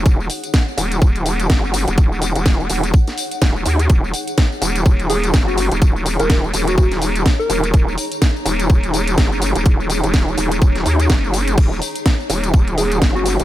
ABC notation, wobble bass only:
X:1
M:4/4
L:1/16
Q:"Swing 16ths" 1/4=125
K:Ebm
V:1 name="Wobble bass" clef=bass
E,,,2 z4 E,,,2 E,,,4 G,,,3 E,,, | E,,,3 E,,,3 E,,,2 z4 E,,,2 E,,2 | E,,,2 z4 E,,,2 E,,,4 G,,,3 E,,, | E,,,3 E,,,3 E,,,2 E,,,4 z2 E,,,2 |
E,,,2 z4 E,,,2 E,,,4 G,,,3 E,,, | E,,,3 E,,,3 E,,,2 E,,,2 E,,2 G,,,4 | E,,,2 z4 E,,,2 E,,,4 G,,,3 E,,, |]